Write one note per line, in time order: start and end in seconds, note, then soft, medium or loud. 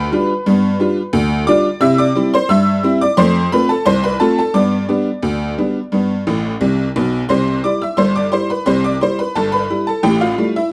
0.00 1.11 B4 medium
0.00 0.87 B5 medium
0.12 0.31 G3 medium
0.12 0.31 D4 medium
0.12 0.31 F4 medium
0.46 0.75 G2 loud
0.46 0.66 B3 medium
0.80 0.98 G3 medium
0.80 0.99 D4 medium
0.80 0.99 F4 medium
1.13 1.42 D2 loud
1.47 1.66 G3 medium
1.47 1.67 D4 medium
1.47 1.67 F4 medium
1.47 1.80 D5 medium
1.47 1.80 D6 loud
1.81 2.10 C3 loud
1.81 2.01 E4 medium
1.81 1.98 E5 loud
1.81 1.98 E6 loud
1.98 2.30 D5 medium
1.98 2.31 D6 loud
2.15 2.34 G3 medium
2.15 2.35 C4 medium
2.15 2.35 E4 medium
2.34 2.49 C5 medium
2.34 2.50 C6 loud
2.49 2.78 G2 loud
2.49 2.97 E5 medium
2.49 2.98 E6 loud
2.83 3.02 G3 medium
2.83 3.02 C4 medium
2.83 3.03 E4 medium
3.01 3.17 D5 medium
3.01 3.18 D6 loud
3.17 3.46 F2 loud
3.17 3.38 A3 medium
3.17 3.49 C5 medium
3.17 3.44 C6 loud
3.52 3.71 A3 medium
3.52 3.71 C4 medium
3.52 3.71 F4 medium
3.52 3.68 B4 medium
3.52 3.69 B5 loud
3.69 3.85 A4 medium
3.69 3.86 A5 medium
3.86 4.15 C2 medium
3.86 4.02 C5 medium
3.86 4.03 C6 loud
4.04 4.20 B4 medium
4.04 4.20 B5 loud
4.20 4.39 A3 medium
4.20 4.39 C4 medium
4.20 4.40 F4 medium
4.20 4.37 A4 medium
4.20 4.37 A5 medium
4.39 4.54 A4 medium
4.39 4.55 A5 medium
4.54 4.84 G2 medium
4.54 4.74 B3 medium
4.54 6.57 D5 medium
4.54 6.56 D6 medium
4.89 5.08 G3 medium
4.89 5.08 B3 medium
4.89 5.08 D4 medium
5.23 5.52 D2 medium
5.58 5.77 G3 soft
5.58 5.77 B3 soft
5.58 5.77 D4 medium
5.92 6.21 G2 medium
5.92 6.12 B3 medium
6.27 6.52 A1 medium
6.27 6.52 A2 medium
6.61 6.86 C2 medium
6.61 6.87 C3 medium
6.96 7.21 B1 medium
6.96 7.21 B2 medium
7.29 7.58 C2 medium
7.29 7.58 C3 medium
7.29 7.62 C5 medium
7.29 7.61 C6 medium
7.64 7.83 G3 soft
7.64 7.83 E4 soft
7.64 7.80 D5 medium
7.64 7.81 D6 medium
7.82 7.98 E5 medium
7.82 7.98 E6 medium
7.97 8.26 G1 medium
7.97 8.26 G2 medium
7.97 8.14 C5 medium
7.97 8.14 C6 medium
8.16 8.32 D5 medium
8.16 8.32 D6 medium
8.32 8.51 G3 soft
8.32 8.51 E4 medium
8.32 8.48 C5 medium
8.32 8.49 C6 medium
8.50 8.66 B4 medium
8.50 8.66 B5 medium
8.66 8.95 C2 medium
8.66 8.95 C3 medium
8.66 8.82 C5 medium
8.66 8.83 C6 medium
8.84 9.00 D5 medium
8.84 9.00 D6 medium
9.01 9.20 G3 soft
9.01 9.20 E4 soft
9.01 9.17 C5 medium
9.01 9.18 C6 medium
9.19 9.34 B4 medium
9.19 9.35 B5 medium
9.35 9.64 G1 medium
9.35 9.64 G2 medium
9.35 9.51 A4 medium
9.35 9.52 A5 medium
9.52 9.84 B4 medium
9.52 9.84 B5 medium
9.70 9.88 G3 soft
9.70 9.88 E4 soft
9.87 10.03 A4 medium
9.87 10.03 A5 medium
10.03 10.31 A1 medium
10.03 10.31 A2 medium
10.03 10.19 G4 medium
10.03 10.19 G5 medium
10.21 10.52 F4 medium
10.21 10.47 F5 medium
10.38 10.56 G3 soft
10.38 10.56 A3 soft
10.38 10.55 E4 soft
10.56 10.71 E4 medium
10.56 10.71 E5 medium